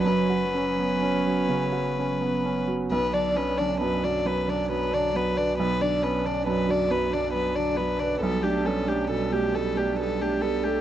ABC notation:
X:1
M:6/8
L:1/16
Q:3/8=45
K:Bm
V:1 name="Violin"
B8- B3 z | B d B d B d B d B d B d | B d B d B d B d B d B d | A G A G A G A G A G A G |]
V:2 name="Viola"
C8- C3 z | B, D B, D B, D B, D B, D B, D | B, D B, D B, D B, D B, D B, D | B, D B, D B, D B, D B, D B, D |]
V:3 name="Felt piano"
F,, F C B, C F, C, F C B, C F, | B,,, D C D F,, F, F,, D F, D F, B | B,,, D C D F,, F, F,, D F, D F, B | B,,, D C D B,, G, B,, D G, D G, A |]
V:4 name="Cello" clef=bass
F,8- F,3 z | F, D, F, D, F, D, F, D, F, D, F, D, | F, D, F, D, F, D, F, D, F, D, F, D, | G, A, G, A, G, A, G, A, G, A, G, A, |]
V:5 name="Sub bass" clef=bass
F,,,12 | B,,,12- | B,,,12 | B,,,12 |]